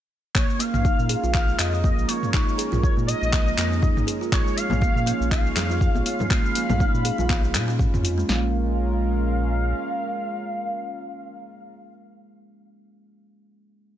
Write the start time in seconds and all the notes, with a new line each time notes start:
0.35 A#1 G#3 A#3 C#4 F4 A#4 C#5, kick, clap, cabasa
0.50 cabasa
0.59 A#3 F5, open hi-hat, cabasa
0.74 A#1, mid tom, cabasa
0.85 D#4, kick, cabasa
0.99 A#2, cabasa
1.09 G#4, open hi-hat, cabasa
1.24 A#1 F4, cabasa
1.34 F5, kick, clap, cabasa
1.48 G#3, cabasa
1.58 F2 D#5, clap, open hi-hat, cabasa
1.73 F3, cabasa
1.83 A#3 D#5, kick, cabasa
1.98 A#1, cabasa
2.08 A#3 C#5, open hi-hat, cabasa
2.23 mid tom, cabasa
2.34 A#1 D#4, kick, clap, cabasa
2.49 cabasa
2.58 G#4, open hi-hat, cabasa
2.72 A#1 F4, mid tom, cabasa
2.82 C#5, kick, cabasa
2.97 A#2 G#3, cabasa
3.07 D#5, open hi-hat, cabasa
3.22 A#1 F3, cabasa
3.32 A#3, kick, clap, cabasa
3.48 cabasa
3.57 F2 A#3, clap, open hi-hat, cabasa
3.73 cabasa
3.82 D#4, kick, mid tom, cabasa
3.97 A#1, mid tom, cabasa
4.07 G#4, open hi-hat, cabasa
4.21 F4, cabasa
4.32 A#1 F4 C#5, kick, clap, cabasa
4.46 G#3, cabasa
4.56 F5, open hi-hat, cabasa
4.70 A#1 F3, mid tom, high conga, low conga, cabasa
4.81 A#3, kick, cabasa
4.96 A#2, cabasa
5.06 A#3, open hi-hat, cabasa
5.20 A#1, cabasa
5.31 F5, kick, clap, cabasa
5.46 cabasa
5.56 F2 G#4, clap, open hi-hat, low conga, cabasa
5.70 F4, cabasa
5.81 kick, cabasa
5.95 A#1 G#3, high conga, cabasa
6.05 F5, open hi-hat, cabasa
6.19 F3, mid tom, low conga, cabasa
6.30 A#1 A#3 B5, kick, clap, cabasa
6.46 cabasa
6.55 A#3, open hi-hat, cabasa
6.69 A#1, mid tom, high conga, low conga, cabasa
6.80 D#4, kick, cabasa
6.94 A#2, high conga, cabasa
7.05 G#4, open hi-hat, cabasa
7.18 A#1 F4, low conga, cabasa
7.29 kick, clap, high conga, cabasa
7.43 G#3, cabasa
7.54 A#2 C#4, clap, open hi-hat, low conga, cabasa
7.68 C#4, cabasa
7.79 C#4, kick, mid tom, cabasa
7.94 F2, mid tom, cabasa
8.04 F4, open hi-hat, cabasa
8.18 G#3, cabasa
8.29 A#1 G#3 A#3 C#4 F4 A#4 F5, snare